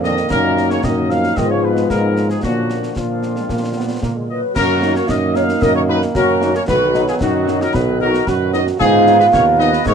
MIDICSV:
0, 0, Header, 1, 8, 480
1, 0, Start_track
1, 0, Key_signature, -6, "minor"
1, 0, Tempo, 530973
1, 277, Time_signature, 2, 2, 24, 8
1, 8988, End_track
2, 0, Start_track
2, 0, Title_t, "Trumpet section"
2, 0, Program_c, 0, 61
2, 33, Note_on_c, 0, 75, 104
2, 258, Note_off_c, 0, 75, 0
2, 274, Note_on_c, 0, 70, 111
2, 611, Note_off_c, 0, 70, 0
2, 641, Note_on_c, 0, 73, 98
2, 751, Note_off_c, 0, 73, 0
2, 754, Note_on_c, 0, 75, 86
2, 996, Note_off_c, 0, 75, 0
2, 998, Note_on_c, 0, 77, 98
2, 1237, Note_on_c, 0, 75, 91
2, 1238, Note_off_c, 0, 77, 0
2, 1358, Note_off_c, 0, 75, 0
2, 1358, Note_on_c, 0, 73, 84
2, 1470, Note_off_c, 0, 73, 0
2, 1477, Note_on_c, 0, 71, 89
2, 1713, Note_on_c, 0, 70, 87
2, 1718, Note_off_c, 0, 71, 0
2, 2051, Note_off_c, 0, 70, 0
2, 2079, Note_on_c, 0, 68, 76
2, 2191, Note_off_c, 0, 68, 0
2, 2193, Note_on_c, 0, 66, 94
2, 2642, Note_off_c, 0, 66, 0
2, 2682, Note_on_c, 0, 65, 69
2, 3881, Note_on_c, 0, 75, 72
2, 3882, Note_off_c, 0, 65, 0
2, 3989, Note_off_c, 0, 75, 0
2, 4116, Note_on_c, 0, 70, 110
2, 4453, Note_off_c, 0, 70, 0
2, 4485, Note_on_c, 0, 73, 111
2, 4601, Note_on_c, 0, 75, 98
2, 4603, Note_off_c, 0, 73, 0
2, 4841, Note_off_c, 0, 75, 0
2, 4843, Note_on_c, 0, 77, 100
2, 5081, Note_off_c, 0, 77, 0
2, 5081, Note_on_c, 0, 75, 115
2, 5201, Note_off_c, 0, 75, 0
2, 5202, Note_on_c, 0, 73, 108
2, 5255, Note_off_c, 0, 73, 0
2, 5325, Note_on_c, 0, 71, 109
2, 5432, Note_off_c, 0, 71, 0
2, 5562, Note_on_c, 0, 70, 103
2, 5896, Note_off_c, 0, 70, 0
2, 5928, Note_on_c, 0, 73, 114
2, 5980, Note_off_c, 0, 73, 0
2, 6040, Note_on_c, 0, 71, 111
2, 6374, Note_off_c, 0, 71, 0
2, 6409, Note_on_c, 0, 68, 108
2, 6461, Note_off_c, 0, 68, 0
2, 6523, Note_on_c, 0, 66, 98
2, 6856, Note_off_c, 0, 66, 0
2, 6886, Note_on_c, 0, 70, 115
2, 6997, Note_on_c, 0, 71, 101
2, 7002, Note_off_c, 0, 70, 0
2, 7238, Note_off_c, 0, 71, 0
2, 7242, Note_on_c, 0, 70, 107
2, 7464, Note_off_c, 0, 70, 0
2, 7479, Note_on_c, 0, 71, 107
2, 7716, Note_on_c, 0, 75, 104
2, 7718, Note_off_c, 0, 71, 0
2, 7824, Note_off_c, 0, 75, 0
2, 7953, Note_on_c, 0, 68, 120
2, 8290, Note_off_c, 0, 68, 0
2, 8315, Note_on_c, 0, 71, 115
2, 8370, Note_off_c, 0, 71, 0
2, 8438, Note_on_c, 0, 73, 109
2, 8546, Note_off_c, 0, 73, 0
2, 8676, Note_on_c, 0, 75, 108
2, 8900, Note_off_c, 0, 75, 0
2, 8921, Note_on_c, 0, 73, 112
2, 8988, Note_off_c, 0, 73, 0
2, 8988, End_track
3, 0, Start_track
3, 0, Title_t, "Flute section"
3, 0, Program_c, 1, 73
3, 3884, Note_on_c, 1, 71, 71
3, 4106, Note_off_c, 1, 71, 0
3, 4124, Note_on_c, 1, 66, 97
3, 4457, Note_off_c, 1, 66, 0
3, 4479, Note_on_c, 1, 70, 88
3, 4586, Note_off_c, 1, 70, 0
3, 4597, Note_on_c, 1, 70, 79
3, 4651, Note_off_c, 1, 70, 0
3, 4835, Note_on_c, 1, 73, 105
3, 4890, Note_off_c, 1, 73, 0
3, 5077, Note_on_c, 1, 70, 109
3, 5186, Note_off_c, 1, 70, 0
3, 5196, Note_on_c, 1, 70, 85
3, 5251, Note_off_c, 1, 70, 0
3, 5316, Note_on_c, 1, 68, 91
3, 5370, Note_off_c, 1, 68, 0
3, 5556, Note_on_c, 1, 66, 101
3, 5892, Note_off_c, 1, 66, 0
3, 5918, Note_on_c, 1, 70, 84
3, 6039, Note_off_c, 1, 70, 0
3, 6041, Note_on_c, 1, 66, 89
3, 6375, Note_off_c, 1, 66, 0
3, 6397, Note_on_c, 1, 65, 83
3, 6452, Note_off_c, 1, 65, 0
3, 6509, Note_on_c, 1, 63, 76
3, 6848, Note_off_c, 1, 63, 0
3, 6870, Note_on_c, 1, 66, 72
3, 6924, Note_off_c, 1, 66, 0
3, 6989, Note_on_c, 1, 66, 82
3, 7044, Note_off_c, 1, 66, 0
3, 7231, Note_on_c, 1, 66, 98
3, 7458, Note_off_c, 1, 66, 0
3, 7477, Note_on_c, 1, 66, 92
3, 7531, Note_off_c, 1, 66, 0
3, 7711, Note_on_c, 1, 71, 95
3, 7766, Note_off_c, 1, 71, 0
3, 7957, Note_on_c, 1, 63, 103
3, 8292, Note_off_c, 1, 63, 0
3, 8316, Note_on_c, 1, 68, 92
3, 8428, Note_on_c, 1, 70, 97
3, 8437, Note_off_c, 1, 68, 0
3, 8666, Note_on_c, 1, 71, 111
3, 8673, Note_off_c, 1, 70, 0
3, 8904, Note_on_c, 1, 70, 108
3, 8912, Note_off_c, 1, 71, 0
3, 8988, Note_off_c, 1, 70, 0
3, 8988, End_track
4, 0, Start_track
4, 0, Title_t, "French horn section"
4, 0, Program_c, 2, 60
4, 35, Note_on_c, 2, 58, 70
4, 35, Note_on_c, 2, 62, 74
4, 36, Note_on_c, 2, 53, 74
4, 122, Note_off_c, 2, 58, 0
4, 122, Note_off_c, 2, 62, 0
4, 123, Note_off_c, 2, 53, 0
4, 275, Note_on_c, 2, 58, 82
4, 275, Note_on_c, 2, 63, 78
4, 278, Note_on_c, 2, 54, 85
4, 723, Note_off_c, 2, 58, 0
4, 723, Note_off_c, 2, 63, 0
4, 725, Note_off_c, 2, 54, 0
4, 757, Note_on_c, 2, 58, 67
4, 758, Note_on_c, 2, 54, 65
4, 758, Note_on_c, 2, 63, 71
4, 1204, Note_off_c, 2, 58, 0
4, 1205, Note_off_c, 2, 54, 0
4, 1205, Note_off_c, 2, 63, 0
4, 1241, Note_on_c, 2, 59, 72
4, 1243, Note_on_c, 2, 53, 71
4, 1244, Note_on_c, 2, 65, 71
4, 1722, Note_off_c, 2, 65, 0
4, 1724, Note_on_c, 2, 63, 57
4, 2164, Note_off_c, 2, 59, 0
4, 2166, Note_off_c, 2, 53, 0
4, 2202, Note_off_c, 2, 63, 0
4, 2203, Note_on_c, 2, 58, 64
4, 2204, Note_on_c, 2, 53, 58
4, 2205, Note_on_c, 2, 62, 56
4, 2648, Note_off_c, 2, 53, 0
4, 2649, Note_off_c, 2, 62, 0
4, 2675, Note_off_c, 2, 58, 0
4, 2686, Note_on_c, 2, 53, 57
4, 2686, Note_on_c, 2, 58, 55
4, 2687, Note_on_c, 2, 62, 55
4, 3847, Note_off_c, 2, 53, 0
4, 3847, Note_off_c, 2, 58, 0
4, 3848, Note_off_c, 2, 62, 0
4, 4363, Note_on_c, 2, 54, 75
4, 4364, Note_on_c, 2, 58, 79
4, 4366, Note_on_c, 2, 63, 82
4, 4449, Note_off_c, 2, 54, 0
4, 4449, Note_off_c, 2, 58, 0
4, 4451, Note_off_c, 2, 63, 0
4, 4843, Note_on_c, 2, 54, 75
4, 4843, Note_on_c, 2, 58, 77
4, 4844, Note_on_c, 2, 63, 69
4, 4929, Note_off_c, 2, 54, 0
4, 4929, Note_off_c, 2, 58, 0
4, 4930, Note_off_c, 2, 63, 0
4, 5318, Note_on_c, 2, 63, 85
4, 5319, Note_on_c, 2, 54, 75
4, 5320, Note_on_c, 2, 58, 73
4, 5405, Note_off_c, 2, 63, 0
4, 5406, Note_off_c, 2, 54, 0
4, 5406, Note_off_c, 2, 58, 0
4, 5795, Note_on_c, 2, 58, 77
4, 5797, Note_on_c, 2, 63, 77
4, 5798, Note_on_c, 2, 54, 74
4, 5882, Note_off_c, 2, 58, 0
4, 5884, Note_off_c, 2, 63, 0
4, 5885, Note_off_c, 2, 54, 0
4, 6271, Note_on_c, 2, 63, 84
4, 6272, Note_off_c, 2, 63, 0
4, 6272, Note_on_c, 2, 63, 81
4, 6273, Note_on_c, 2, 54, 82
4, 6360, Note_off_c, 2, 63, 0
4, 6361, Note_off_c, 2, 54, 0
4, 6753, Note_on_c, 2, 63, 71
4, 6754, Note_off_c, 2, 63, 0
4, 6754, Note_on_c, 2, 63, 77
4, 6756, Note_on_c, 2, 54, 78
4, 6842, Note_off_c, 2, 63, 0
4, 6843, Note_off_c, 2, 54, 0
4, 7235, Note_on_c, 2, 54, 78
4, 7236, Note_on_c, 2, 63, 76
4, 7237, Note_off_c, 2, 63, 0
4, 7237, Note_on_c, 2, 63, 83
4, 7322, Note_off_c, 2, 54, 0
4, 7324, Note_off_c, 2, 63, 0
4, 7713, Note_on_c, 2, 63, 73
4, 7714, Note_off_c, 2, 63, 0
4, 7714, Note_on_c, 2, 54, 77
4, 7714, Note_on_c, 2, 63, 71
4, 7801, Note_off_c, 2, 63, 0
4, 7802, Note_off_c, 2, 54, 0
4, 8195, Note_on_c, 2, 59, 74
4, 8195, Note_on_c, 2, 63, 81
4, 8196, Note_off_c, 2, 63, 0
4, 8196, Note_on_c, 2, 63, 85
4, 8282, Note_off_c, 2, 59, 0
4, 8283, Note_off_c, 2, 63, 0
4, 8672, Note_on_c, 2, 63, 85
4, 8673, Note_off_c, 2, 63, 0
4, 8673, Note_on_c, 2, 59, 79
4, 8673, Note_on_c, 2, 63, 78
4, 8760, Note_off_c, 2, 59, 0
4, 8761, Note_off_c, 2, 63, 0
4, 8988, End_track
5, 0, Start_track
5, 0, Title_t, "Trombone section"
5, 0, Program_c, 3, 61
5, 0, Note_on_c, 3, 50, 98
5, 0, Note_on_c, 3, 58, 98
5, 244, Note_off_c, 3, 50, 0
5, 266, Note_off_c, 3, 58, 0
5, 274, Note_on_c, 3, 51, 84
5, 277, Note_on_c, 3, 58, 83
5, 1202, Note_off_c, 3, 58, 0
5, 1237, Note_off_c, 3, 51, 0
5, 1238, Note_on_c, 3, 53, 67
5, 1240, Note_on_c, 3, 56, 78
5, 2163, Note_off_c, 3, 53, 0
5, 2200, Note_off_c, 3, 56, 0
5, 2200, Note_on_c, 3, 58, 64
5, 2204, Note_on_c, 3, 50, 66
5, 2632, Note_off_c, 3, 58, 0
5, 2634, Note_off_c, 3, 50, 0
5, 2686, Note_on_c, 3, 53, 68
5, 3018, Note_off_c, 3, 53, 0
5, 3048, Note_on_c, 3, 56, 67
5, 3100, Note_off_c, 3, 56, 0
5, 3154, Note_on_c, 3, 58, 62
5, 3264, Note_off_c, 3, 58, 0
5, 3387, Note_on_c, 3, 59, 70
5, 3616, Note_off_c, 3, 59, 0
5, 3627, Note_on_c, 3, 58, 77
5, 3745, Note_off_c, 3, 58, 0
5, 3766, Note_on_c, 3, 56, 64
5, 3881, Note_on_c, 3, 54, 63
5, 3883, Note_off_c, 3, 56, 0
5, 4119, Note_on_c, 3, 51, 94
5, 4119, Note_on_c, 3, 58, 94
5, 4121, Note_off_c, 3, 54, 0
5, 6003, Note_off_c, 3, 51, 0
5, 6003, Note_off_c, 3, 58, 0
5, 6042, Note_on_c, 3, 54, 96
5, 6043, Note_on_c, 3, 51, 94
5, 7923, Note_off_c, 3, 54, 0
5, 7924, Note_off_c, 3, 51, 0
5, 7957, Note_on_c, 3, 51, 90
5, 7958, Note_on_c, 3, 59, 93
5, 8988, Note_off_c, 3, 51, 0
5, 8988, Note_off_c, 3, 59, 0
5, 8988, End_track
6, 0, Start_track
6, 0, Title_t, "Euphonium"
6, 0, Program_c, 4, 58
6, 34, Note_on_c, 4, 51, 90
6, 272, Note_on_c, 4, 46, 105
6, 286, Note_off_c, 4, 51, 0
6, 629, Note_off_c, 4, 46, 0
6, 634, Note_on_c, 4, 49, 80
6, 746, Note_off_c, 4, 49, 0
6, 751, Note_on_c, 4, 51, 80
6, 861, Note_off_c, 4, 51, 0
6, 985, Note_on_c, 4, 53, 81
6, 1214, Note_off_c, 4, 53, 0
6, 1233, Note_on_c, 4, 51, 104
6, 1347, Note_off_c, 4, 51, 0
6, 1355, Note_on_c, 4, 49, 72
6, 1478, Note_on_c, 4, 47, 74
6, 1492, Note_off_c, 4, 49, 0
6, 1716, Note_on_c, 4, 46, 74
6, 1729, Note_off_c, 4, 47, 0
6, 2072, Note_on_c, 4, 44, 66
6, 2086, Note_off_c, 4, 46, 0
6, 2193, Note_on_c, 4, 42, 80
6, 2206, Note_off_c, 4, 44, 0
6, 2508, Note_off_c, 4, 42, 0
6, 2670, Note_on_c, 4, 41, 55
6, 3839, Note_off_c, 4, 41, 0
6, 4112, Note_on_c, 4, 66, 104
6, 4594, Note_on_c, 4, 63, 109
6, 4607, Note_off_c, 4, 66, 0
6, 5550, Note_off_c, 4, 63, 0
6, 5555, Note_on_c, 4, 61, 93
6, 6004, Note_off_c, 4, 61, 0
6, 6036, Note_on_c, 4, 59, 102
6, 6484, Note_off_c, 4, 59, 0
6, 6521, Note_on_c, 4, 63, 103
6, 7443, Note_off_c, 4, 63, 0
6, 7484, Note_on_c, 4, 66, 106
6, 7927, Note_off_c, 4, 66, 0
6, 7954, Note_on_c, 4, 65, 126
6, 8879, Note_off_c, 4, 65, 0
6, 8912, Note_on_c, 4, 63, 108
6, 8988, Note_off_c, 4, 63, 0
6, 8988, End_track
7, 0, Start_track
7, 0, Title_t, "Tuba"
7, 0, Program_c, 5, 58
7, 0, Note_on_c, 5, 41, 77
7, 199, Note_off_c, 5, 41, 0
7, 277, Note_on_c, 5, 42, 84
7, 701, Note_off_c, 5, 42, 0
7, 757, Note_on_c, 5, 42, 78
7, 1181, Note_off_c, 5, 42, 0
7, 1243, Note_on_c, 5, 44, 78
7, 1665, Note_off_c, 5, 44, 0
7, 1723, Note_on_c, 5, 44, 69
7, 2145, Note_off_c, 5, 44, 0
7, 2199, Note_on_c, 5, 46, 69
7, 2623, Note_off_c, 5, 46, 0
7, 2682, Note_on_c, 5, 46, 56
7, 3105, Note_off_c, 5, 46, 0
7, 3161, Note_on_c, 5, 46, 71
7, 3584, Note_off_c, 5, 46, 0
7, 3642, Note_on_c, 5, 46, 62
7, 3998, Note_off_c, 5, 46, 0
7, 4125, Note_on_c, 5, 42, 92
7, 4523, Note_off_c, 5, 42, 0
7, 4606, Note_on_c, 5, 42, 85
7, 5003, Note_off_c, 5, 42, 0
7, 5079, Note_on_c, 5, 42, 88
7, 5479, Note_off_c, 5, 42, 0
7, 5560, Note_on_c, 5, 42, 77
7, 5960, Note_off_c, 5, 42, 0
7, 6043, Note_on_c, 5, 35, 96
7, 6441, Note_off_c, 5, 35, 0
7, 6521, Note_on_c, 5, 42, 84
7, 6920, Note_off_c, 5, 42, 0
7, 7000, Note_on_c, 5, 35, 96
7, 7399, Note_off_c, 5, 35, 0
7, 7479, Note_on_c, 5, 42, 83
7, 7878, Note_off_c, 5, 42, 0
7, 7962, Note_on_c, 5, 44, 99
7, 8360, Note_off_c, 5, 44, 0
7, 8440, Note_on_c, 5, 39, 87
7, 8838, Note_off_c, 5, 39, 0
7, 8919, Note_on_c, 5, 44, 103
7, 8988, Note_off_c, 5, 44, 0
7, 8988, End_track
8, 0, Start_track
8, 0, Title_t, "Drums"
8, 38, Note_on_c, 9, 38, 58
8, 128, Note_off_c, 9, 38, 0
8, 155, Note_on_c, 9, 38, 56
8, 245, Note_off_c, 9, 38, 0
8, 275, Note_on_c, 9, 35, 87
8, 275, Note_on_c, 9, 38, 83
8, 275, Note_on_c, 9, 49, 33
8, 365, Note_off_c, 9, 35, 0
8, 365, Note_off_c, 9, 38, 0
8, 365, Note_off_c, 9, 49, 0
8, 519, Note_on_c, 9, 38, 57
8, 609, Note_off_c, 9, 38, 0
8, 637, Note_on_c, 9, 38, 56
8, 727, Note_off_c, 9, 38, 0
8, 755, Note_on_c, 9, 35, 85
8, 755, Note_on_c, 9, 38, 84
8, 846, Note_off_c, 9, 35, 0
8, 846, Note_off_c, 9, 38, 0
8, 999, Note_on_c, 9, 38, 54
8, 1090, Note_off_c, 9, 38, 0
8, 1117, Note_on_c, 9, 38, 55
8, 1207, Note_off_c, 9, 38, 0
8, 1238, Note_on_c, 9, 35, 87
8, 1238, Note_on_c, 9, 38, 77
8, 1328, Note_off_c, 9, 35, 0
8, 1328, Note_off_c, 9, 38, 0
8, 1596, Note_on_c, 9, 38, 52
8, 1687, Note_off_c, 9, 38, 0
8, 1719, Note_on_c, 9, 35, 81
8, 1719, Note_on_c, 9, 38, 79
8, 1809, Note_off_c, 9, 35, 0
8, 1809, Note_off_c, 9, 38, 0
8, 1958, Note_on_c, 9, 38, 52
8, 2048, Note_off_c, 9, 38, 0
8, 2077, Note_on_c, 9, 38, 56
8, 2167, Note_off_c, 9, 38, 0
8, 2199, Note_on_c, 9, 35, 82
8, 2199, Note_on_c, 9, 38, 75
8, 2290, Note_off_c, 9, 35, 0
8, 2290, Note_off_c, 9, 38, 0
8, 2438, Note_on_c, 9, 38, 58
8, 2528, Note_off_c, 9, 38, 0
8, 2559, Note_on_c, 9, 38, 51
8, 2650, Note_off_c, 9, 38, 0
8, 2679, Note_on_c, 9, 35, 73
8, 2679, Note_on_c, 9, 38, 72
8, 2769, Note_off_c, 9, 35, 0
8, 2769, Note_off_c, 9, 38, 0
8, 2916, Note_on_c, 9, 38, 47
8, 3007, Note_off_c, 9, 38, 0
8, 3038, Note_on_c, 9, 38, 50
8, 3129, Note_off_c, 9, 38, 0
8, 3158, Note_on_c, 9, 35, 76
8, 3158, Note_on_c, 9, 38, 63
8, 3249, Note_off_c, 9, 35, 0
8, 3249, Note_off_c, 9, 38, 0
8, 3640, Note_on_c, 9, 35, 76
8, 3640, Note_on_c, 9, 38, 73
8, 3730, Note_off_c, 9, 35, 0
8, 3730, Note_off_c, 9, 38, 0
8, 4122, Note_on_c, 9, 35, 91
8, 4122, Note_on_c, 9, 38, 84
8, 4122, Note_on_c, 9, 49, 64
8, 4213, Note_off_c, 9, 35, 0
8, 4213, Note_off_c, 9, 38, 0
8, 4213, Note_off_c, 9, 49, 0
8, 4362, Note_on_c, 9, 38, 59
8, 4452, Note_off_c, 9, 38, 0
8, 4482, Note_on_c, 9, 38, 58
8, 4572, Note_off_c, 9, 38, 0
8, 4601, Note_on_c, 9, 35, 78
8, 4601, Note_on_c, 9, 38, 85
8, 4691, Note_off_c, 9, 35, 0
8, 4691, Note_off_c, 9, 38, 0
8, 4841, Note_on_c, 9, 38, 56
8, 4932, Note_off_c, 9, 38, 0
8, 4961, Note_on_c, 9, 38, 62
8, 5052, Note_off_c, 9, 38, 0
8, 5081, Note_on_c, 9, 35, 96
8, 5081, Note_on_c, 9, 38, 85
8, 5171, Note_off_c, 9, 35, 0
8, 5171, Note_off_c, 9, 38, 0
8, 5443, Note_on_c, 9, 38, 59
8, 5533, Note_off_c, 9, 38, 0
8, 5559, Note_on_c, 9, 35, 85
8, 5559, Note_on_c, 9, 38, 84
8, 5650, Note_off_c, 9, 35, 0
8, 5650, Note_off_c, 9, 38, 0
8, 5801, Note_on_c, 9, 38, 60
8, 5891, Note_off_c, 9, 38, 0
8, 5918, Note_on_c, 9, 38, 58
8, 6009, Note_off_c, 9, 38, 0
8, 6040, Note_on_c, 9, 35, 96
8, 6040, Note_on_c, 9, 38, 85
8, 6040, Note_on_c, 9, 49, 35
8, 6130, Note_off_c, 9, 35, 0
8, 6130, Note_off_c, 9, 38, 0
8, 6130, Note_off_c, 9, 49, 0
8, 6278, Note_on_c, 9, 38, 60
8, 6368, Note_off_c, 9, 38, 0
8, 6397, Note_on_c, 9, 38, 60
8, 6488, Note_off_c, 9, 38, 0
8, 6516, Note_on_c, 9, 35, 87
8, 6516, Note_on_c, 9, 38, 85
8, 6606, Note_off_c, 9, 35, 0
8, 6606, Note_off_c, 9, 38, 0
8, 6759, Note_on_c, 9, 38, 60
8, 6849, Note_off_c, 9, 38, 0
8, 6882, Note_on_c, 9, 38, 60
8, 6973, Note_off_c, 9, 38, 0
8, 7001, Note_on_c, 9, 35, 90
8, 7001, Note_on_c, 9, 38, 84
8, 7091, Note_off_c, 9, 35, 0
8, 7091, Note_off_c, 9, 38, 0
8, 7360, Note_on_c, 9, 38, 62
8, 7451, Note_off_c, 9, 38, 0
8, 7477, Note_on_c, 9, 35, 83
8, 7477, Note_on_c, 9, 38, 82
8, 7568, Note_off_c, 9, 35, 0
8, 7568, Note_off_c, 9, 38, 0
8, 7716, Note_on_c, 9, 38, 58
8, 7806, Note_off_c, 9, 38, 0
8, 7837, Note_on_c, 9, 38, 54
8, 7927, Note_off_c, 9, 38, 0
8, 7958, Note_on_c, 9, 35, 94
8, 7958, Note_on_c, 9, 38, 82
8, 7958, Note_on_c, 9, 49, 37
8, 8048, Note_off_c, 9, 35, 0
8, 8048, Note_off_c, 9, 38, 0
8, 8048, Note_off_c, 9, 49, 0
8, 8196, Note_on_c, 9, 38, 58
8, 8287, Note_off_c, 9, 38, 0
8, 8318, Note_on_c, 9, 38, 57
8, 8408, Note_off_c, 9, 38, 0
8, 8438, Note_on_c, 9, 35, 89
8, 8438, Note_on_c, 9, 38, 85
8, 8528, Note_off_c, 9, 35, 0
8, 8528, Note_off_c, 9, 38, 0
8, 8679, Note_on_c, 9, 38, 62
8, 8769, Note_off_c, 9, 38, 0
8, 8797, Note_on_c, 9, 38, 62
8, 8888, Note_off_c, 9, 38, 0
8, 8911, Note_on_c, 9, 35, 87
8, 8911, Note_on_c, 9, 38, 82
8, 8988, Note_off_c, 9, 35, 0
8, 8988, Note_off_c, 9, 38, 0
8, 8988, End_track
0, 0, End_of_file